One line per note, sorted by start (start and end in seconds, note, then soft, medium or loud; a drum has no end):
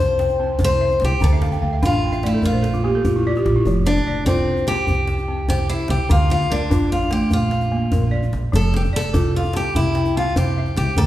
0.00 0.51 C2 medium
0.00 0.59 C5 medium
0.19 0.81 G5 medium
0.19 djembe slap medium
0.29 djembe slap soft
0.29 djembe tone soft
0.39 0.81 C4 medium
0.59 0.94 C2 medium
0.59 1.21 C5 medium
0.59 djembe slap medium
0.59 djembe tone medium
0.59 djembe bass medium
0.64 1.04 C5 loud
0.80 1.22 E5 medium
0.80 djembe slap soft
0.90 djembe tone soft
1.00 1.10 C2 medium
1.00 djembe slap medium
1.04 1.23 G4 medium
1.20 1.56 D2 loud
1.20 1.62 D3 medium
1.20 1.61 A4 medium
1.20 djembe tone medium
1.20 djembe bass medium
1.30 1.51 E5 medium
1.30 djembe slap soft
1.42 1.60 F5 medium
1.42 djembe slap medium
1.52 1.71 G5 medium
1.52 djembe slap soft
1.52 djembe tone medium
1.62 1.79 D2 medium
1.62 1.81 F5 medium
1.62 djembe slap soft
1.73 1.92 E5 medium
1.82 2.34 A1 medium
1.82 2.23 D4 medium
1.82 2.26 F4 medium
1.82 2.01 F5 medium
1.82 djembe slap medium
1.82 djembe tone medium
1.82 djembe bass medium
1.92 2.11 G5 medium
2.03 2.22 F5 medium
2.12 2.32 E5 medium
2.12 djembe slap soft
2.12 djembe tone soft
2.23 2.44 A3 medium
2.23 2.45 E4 medium
2.23 2.42 D5 medium
2.23 djembe slap medium
2.34 2.53 A4 medium
2.42 2.95 A#1 medium
2.42 3.22 F4 medium
2.42 2.62 A#4 medium
2.42 djembe tone medium
2.42 djembe bass medium
2.53 2.72 C5 medium
2.62 2.82 A4 medium
2.62 djembe slap medium
2.74 2.93 F4 medium
2.74 djembe slap soft
2.74 djembe tone medium
2.84 3.25 A#3 medium
2.84 3.03 G4 medium
2.95 3.14 A4 medium
3.05 3.39 A#1 medium
3.05 3.24 F4 medium
3.05 djembe slap medium
3.05 djembe tone medium
3.05 djembe bass medium
3.16 3.34 E4 medium
3.25 3.44 F4 medium
3.25 3.67 D5 medium
3.25 djembe slap soft
3.36 3.55 G4 medium
3.36 djembe tone soft
3.46 3.54 A#1 medium
3.46 3.64 F4 medium
3.46 djembe slap medium
3.56 3.75 E4 medium
3.65 3.99 F1 medium
3.65 4.07 F3 medium
3.65 djembe tone medium
3.65 djembe bass medium
3.76 djembe slap soft
3.86 4.24 D4 medium
3.86 djembe slap medium
3.96 djembe slap soft
3.96 djembe tone soft
4.06 4.24 F1 medium
4.06 4.68 D5 medium
4.06 djembe slap soft
4.26 4.78 C2 medium
4.26 4.64 C4 medium
4.26 4.68 F4 medium
4.26 4.88 A4 medium
4.26 djembe slap medium
4.26 djembe tone medium
4.26 djembe bass medium
4.57 djembe slap soft
4.57 djembe tone soft
4.67 4.88 C4 medium
4.67 5.48 G4 loud
4.67 djembe slap medium
4.87 5.39 C2 medium
4.87 djembe tone medium
4.87 djembe bass medium
5.07 5.69 G5 medium
5.07 djembe slap medium
5.18 djembe slap soft
5.18 djembe tone medium
5.28 5.69 C4 medium
5.48 5.83 C2 medium
5.48 5.68 G4 loud
5.48 6.10 C5 medium
5.48 djembe slap medium
5.48 djembe tone medium
5.48 djembe bass medium
5.69 5.90 E4 medium
5.69 6.10 E5 medium
5.69 djembe slap soft
5.78 djembe tone soft
5.88 5.98 C2 loud
5.88 6.10 G4 medium
5.88 djembe slap medium
6.09 6.44 D2 loud
6.09 6.50 D3 medium
6.09 6.30 F4 medium
6.09 djembe slap soft
6.09 djembe tone medium
6.09 djembe bass medium
6.20 djembe slap soft
6.30 6.52 F4 medium
6.30 djembe slap medium
6.41 djembe slap soft
6.41 djembe tone soft
6.50 6.68 D2 medium
6.50 6.89 D4 medium
6.50 7.11 A#4 medium
6.70 7.22 A1 medium
6.70 7.11 D4 medium
6.70 7.31 F4 medium
6.70 djembe slap medium
6.70 djembe tone medium
6.70 djembe bass medium
6.82 djembe slap soft
6.92 7.12 F4 medium
7.01 djembe tone soft
7.11 7.31 A3 medium
7.11 7.33 G4 medium
7.11 djembe slap medium
7.21 djembe slap soft
7.31 7.83 A#1 medium
7.31 8.30 F4 medium
7.31 djembe slap soft
7.31 djembe tone medium
7.31 djembe bass medium
7.51 8.13 F5 medium
7.51 djembe slap medium
7.61 djembe slap soft
7.61 djembe tone medium
7.72 8.13 A#3 medium
7.72 djembe slap soft
7.92 8.27 A#1 medium
7.92 8.53 A#4 medium
7.92 djembe slap medium
7.92 djembe tone medium
7.92 djembe bass medium
8.11 8.53 D5 medium
8.11 djembe slap soft
8.23 djembe slap soft
8.23 djembe tone medium
8.33 8.41 A#1 medium
8.33 djembe slap medium
8.42 djembe slap soft
8.52 8.87 F1 loud
8.52 8.94 F3 medium
8.52 8.75 A4 medium
8.52 djembe tone medium
8.52 djembe bass medium
8.64 djembe slap soft
8.74 8.82 G4 medium
8.74 djembe slap medium
8.85 djembe slap soft
8.85 djembe tone medium
8.93 9.11 F1 medium
8.93 9.33 A4 medium
8.93 9.55 D5 medium
8.93 djembe slap soft
9.13 9.65 C2 medium
9.13 9.55 F4 medium
9.13 9.75 A4 medium
9.13 djembe slap medium
9.13 djembe tone medium
9.13 djembe bass medium
9.36 9.56 F4 medium
9.44 djembe slap soft
9.44 djembe tone medium
9.53 9.76 C4 medium
9.53 9.76 G4 medium
9.53 djembe slap medium
9.75 10.27 C2 medium
9.75 10.17 E4 medium
9.75 djembe tone medium
9.75 djembe bass medium
9.95 10.57 G5 medium
9.95 djembe slap medium
10.05 djembe slap soft
10.05 djembe tone medium
10.16 10.57 C4 medium
10.16 10.36 F4 medium
10.36 10.70 C2 medium
10.36 10.76 G4 medium
10.36 10.98 C5 medium
10.36 djembe slap medium
10.36 djembe tone medium
10.36 djembe bass medium
10.57 10.98 E5 medium
10.57 djembe slap soft
10.66 djembe tone medium
10.76 10.86 C2 loud
10.76 10.97 G4 medium
10.76 djembe slap medium
10.96 11.07 D2 loud
10.96 11.07 D3 medium
10.96 11.07 A4 medium
10.96 djembe tone medium
10.96 djembe bass medium